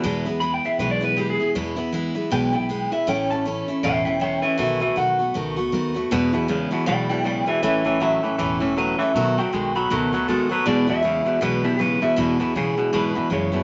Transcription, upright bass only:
X:1
M:4/4
L:1/8
Q:"Swing" 1/4=158
K:E
V:1 name="Upright bass" clef=bass
E,,4 B,,,4 | E,,4 B,,,4 | A,,,4 E,,,4 | B,,,2 B,,,2 C,,2 D,,2 |
E,,4 B,,,4 | A,,,4 E,,,4 | B,,,2 B,,,2 C,,2 D,,2 | E,,4 B,,,4 |
E,,2 B,,2 G,, z F,,2 |]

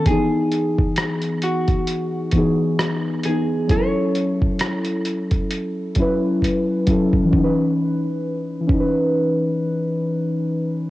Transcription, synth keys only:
X:1
M:4/4
L:1/8
Q:"Swing 16ths" 1/4=66
K:C#m
V:1 name="Synth keys"
[E,B,DG]3 z2 [E,B,DG] z [E,B,DG] | [F,CEA]3 z2 [F,CEB] z [F,CEA] | [E,CDB] z2 [E,CDB]4- [E,CDB] |]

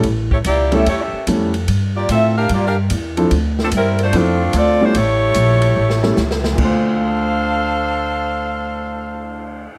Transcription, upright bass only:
X:1
M:4/4
L:1/8
Q:"Swing" 1/4=147
K:Dm
V:1 name="Upright bass" clef=bass
A,,,2 ^C,,2 E,, z F,,2 | G,,2 A,,2 G,,2 E,,2 | D,,2 G,,2 F,,2 D,,2 | A,,,2 B,,,2 A,,,2 ^C,,2 |
D,,8- | D,,8 |]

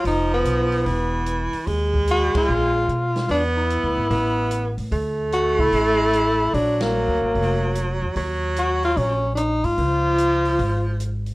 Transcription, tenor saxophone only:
X:1
M:4/4
L:1/16
Q:"Swing" 1/4=148
K:D#m
V:1 name="Tenor saxophone"
D2 B,12 z2 | z4 F2 E8- E2 | =D2 =E12 z2 | z4 F2 =E8- E2 |
=D2 A,12 z2 | z4 F2 E2 C3- C/2 =D/2 ^D2 E2- | E12 z4 |]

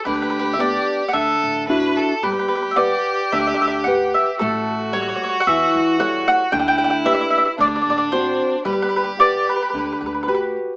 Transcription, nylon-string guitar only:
X:1
M:4/4
L:1/8
Q:1/4=112
K:G
V:1 name="Nylon-string guitar"
D,2 [B,DG]2 D,2 [DEF]2 | G,2 [GBf]2 D,2 [GBf]2 | A,2 [G,A^c]2 E,2 [G,Ac]2 | D,2 [DGB]2 D,2 [CDF]2 |
G,2 [GBf]2 D,2 [FGB]2 |]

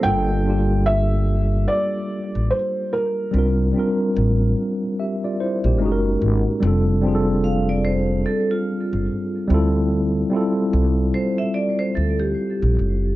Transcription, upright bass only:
X:1
M:4/4
L:1/16
Q:"Swing 16ths" 1/4=73
K:Gdor
V:1 name="Upright bass" clef=bass
G,,,8 z3 A,,, z4 | C,,2 z2 A,,,2 z4 z B,,, ^F,,,2 ^G,,, z | F,,,8 z3 G,,, z2 D,,2- | D,,2 z2 C,,2 z4 D,,2 z B,,, ^F,,,2 |]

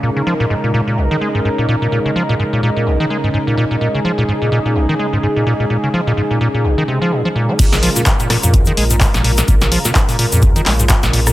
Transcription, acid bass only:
X:1
M:4/4
L:1/16
Q:"Swing 16ths" 1/4=127
K:Bbm
V:1 name="Acid bass" clef=bass
B,, D, F, B,, A,, B,, B,, B,, B,,, E, A, A,, A,, B,, B,, B,, | B,, D, F, B,, A,, B,, B,, B,, B,,, E, A, A,, A,, B,, B,, B,, | B,, D, F, B,, A,, B,, B,, B,, B,,, E, A, A,, A,, B,, B,, B,, | B,, D, F, B,, A,, B,, B,, B,, B,,, E, C, F, B,, F, B,, B, |
B,, D, F, B,, A,, B,, B,, B,, B,,, E, A, A,, A,, B,, B,, B,, | B,, D, F, B,, A,, B,, B,, B,, B,,, E, A, A,, A,, B,, B,, B,, |]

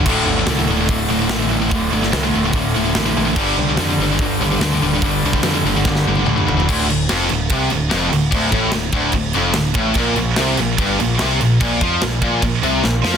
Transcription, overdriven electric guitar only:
X:1
M:4/4
L:1/8
Q:1/4=145
K:Dm
V:1 name="Overdriven electric guitar" clef=bass
[D,,A,,D,]8 | [D,,A,,D,]8 | [G,,D,G,]8 | [G,,D,G,]8 |
D,, D,, F,, D,, C, D,, F,, D,, | D,, A,, D,, D,, D,, F,, D,, A,, | B,, B,, C, B,, G,, B,, C, B,, | B,, F, B,, B,, B,, C, B,, F, |]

